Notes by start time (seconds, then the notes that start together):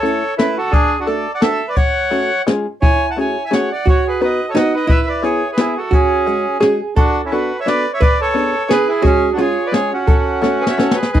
Already playing: A4 C#5
0.02 A3 C#4 E4 A4, closed hi-hat
0.38 A3 C#4 E4 A4 B4, snare, closed hi-hat
0.57 F#4 A4
0.71 D4 G#4, kick, closed hi-hat
0.99 D4 F#4
1.06 A3 D4 F#4 A4 D5, closed hi-hat
1.34 D5 F#5
1.41 A3 D4 F#4 A4 E5, snare, closed hi-hat
1.68 B4 D5
1.75 C#5 F#5, kick, closed hi-hat
2.11 A3 C#4 F#4 A4, closed hi-hat
2.47 G#3 C#4 F4 G#4, snare, closed hi-hat
2.82 E4 C#5 G#5, kick, closed hi-hat
3.11 F#5 A5
3.16 A3 C#4 F#4 G#4 C#5 G#5, closed hi-hat
3.45 E5 G#5
3.51 A3 C#4 F#4 G#4 C#5 F#5, snare, closed hi-hat
3.72 D5 F#5
3.86 F#4 C#5, kick, closed hi-hat
4.07 G#4 B4
4.21 B3 D#4 F#4 B4 D#5, closed hi-hat
4.49 A4 C#5
4.54 B3 D#4 F#4 B4 D#5 F#5, snare, closed hi-hat
4.75 B4 D#5
4.87 E4 B4 E5, kick, closed hi-hat
5.07 B4 D5
5.23 B3 E4 G#4 B4 C#5, closed hi-hat
5.51 G#4 B4
5.57 B3 E4 G#4 B4, snare, closed hi-hat
5.77 F#4 A4
5.91 C#4 F#4 G#4, kick, closed hi-hat
6.26 G#3 C#4 F#4 G#4, closed hi-hat
6.60 G#3 C#4 F#4 G#4, snare, closed hi-hat
6.96 D4 F#4 A4, kick, closed hi-hat
7.25 C#4 E4
7.32 B3 D4 F#4 A4 B4, closed hi-hat
7.60 C#5 E5
7.65 B3 D4 F#4 A4 B4 D5, snare, closed hi-hat
7.93 C#5 E5
8.01 B4 D5, kick, closed hi-hat
8.21 A4 C#5
8.34 B3 D4 G#4 B4, closed hi-hat
8.69 B3 D4 G#4 B4, snare, closed hi-hat
8.89 E4 G#4
9.02 G#3 C#4 F#4 G#4, kick, closed hi-hat
9.06 G#4
9.33 D4 F#4
9.37 G#3 C#4 F4 G#4, closed hi-hat
9.42 C#5
9.66 B4 D5
9.71 G#3 C#4 F4 G#4 C#5, snare, closed hi-hat
9.93 C#4 F#4
10.07 A4, kick, closed hi-hat
10.42 A3 C#4 F#4 A4, snare
10.61 G#4 B4
10.67 C#5 E5, snare
10.78 A3 C#4 F#4 A4 C#5, snare
10.91 snare
10.95 G#4 B4
11.03 snare
11.12 D#4 G#4 B4, kick, ride